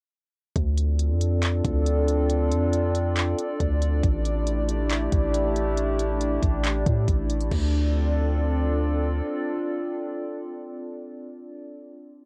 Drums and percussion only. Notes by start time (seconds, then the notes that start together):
0.56 kick, closed hi-hat
0.78 closed hi-hat
0.99 closed hi-hat
1.21 closed hi-hat
1.43 clap, closed hi-hat
1.65 kick, closed hi-hat
1.86 closed hi-hat
2.08 closed hi-hat
2.30 closed hi-hat
2.52 closed hi-hat
2.73 closed hi-hat
2.95 closed hi-hat
3.17 clap, closed hi-hat
3.39 closed hi-hat
3.60 kick, closed hi-hat
3.82 closed hi-hat
4.03 kick, closed hi-hat
4.25 closed hi-hat
4.47 closed hi-hat
4.69 closed hi-hat
4.90 clap, closed hi-hat
5.12 kick, closed hi-hat
5.34 closed hi-hat
5.56 closed hi-hat
5.77 closed hi-hat
5.99 closed hi-hat
6.21 closed hi-hat
6.43 kick, closed hi-hat
6.64 clap, closed hi-hat
6.86 kick, closed hi-hat
7.08 kick, closed hi-hat
7.30 closed hi-hat
7.41 closed hi-hat
7.51 kick, crash